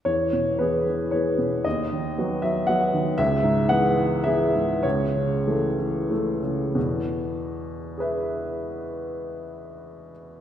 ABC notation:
X:1
M:3/4
L:1/8
Q:1/4=98
K:E
V:1 name="Upright piano"
c2 B2 c2 | d3 e f2 | e2 f2 e2 | c4 z2 |
z4 [GBe]2- | [GBe]6 |]
V:2 name="Upright piano" clef=bass
E,, B,, [E,B,G] E, [E,B,G] B,, | D,, D, [F,B,F] F, [F,B,F] D, | C,, G,, [E,B,G] E, [E,B,G] G,, | C,, C, [E,A,A] E, [E,A,A] C, |
[E,,B,,]6- | [E,,B,,]6 |]